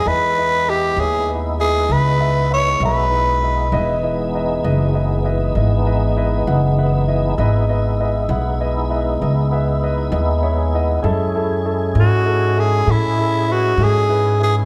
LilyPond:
<<
  \new Staff \with { instrumentName = "Grand piano" } { \time 12/8 \key cis \minor \tempo 4. = 66 << { r1. | r1. | r1 r4 b''16 gis''16 fis''8 | r1. | } \\ { <e' b' dis''>8 <e' b' dis''>8 <e' b' dis''>8 <e' b' cis''>8 <e' b' dis''>8 <e' b' dis''>8 <e' b'>8 <e' b' e''>8 <e' b' e''>8 <e' b' e''>8 <e' b' dis''>8 <e' b' dis''>8 | <e' b' dis''>8 <e' b' dis''>8 <e' b' dis''>8 <e' b' dis''>8 <e' b' dis''>8 <e' b' dis''>8 <e' b' dis''>8 <e' b' dis''>8 <e' b' dis''>8 <e' b' fis''>8 <e' b' fis''>8 <e' b' dis''>8 | <e' b' dis''>8 <e' b' dis''>8 <e' b' dis''>8 <e' b' fis''>8 <e' b' dis''>8 <e' b' dis''>8 <e' b' dis''>8 <e' b' e''>8 <e' b' dis''>8 <e' b' dis''>8 <e' b' cis''>8 <e' b' dis''>8 | <e' gis' a'>8 <e' gis' a'>8 <e' gis' a'>8 <e' gis' a'>8 <e' gis' a'>8 <e' gis' a'>8 <e' gis' a'>8 <e' gis' a'>8 <e' gis' b'>8 <e' gis' a'>8 <e' gis' b'>8 <e' gis' b'>8 | } >> }
  \new Staff \with { instrumentName = "Tenor saxophone" } { \time 12/8 \key cis \minor b'4 g'8 gis'8 r8 gis'8 b'4 cis''8 b'4.~ | b'8 r1 r4. | r1. | r4. fis'4 gis'8 e'4 fis'8 gis'4 gis'8 | }
  \new Staff \with { instrumentName = "Tonewheel organ" } { \time 12/8 \key cis \minor <gis b dis' e'>1. | <e gis b dis'>1. | <gis b dis' e'>1. | <gis cis' e' gis'>1. | }
  \new Staff \with { instrumentName = "Upright bass" } { \clef bass \time 12/8 \key cis \minor e,4. dis,4. cis,4. b,,4. | e,,4. fis,,4. gis,,4. fis,,4. | gis,,4. b,,4. cis,4. dis,4. | fis,4. gis,4. a,4. gis,4. | }
>>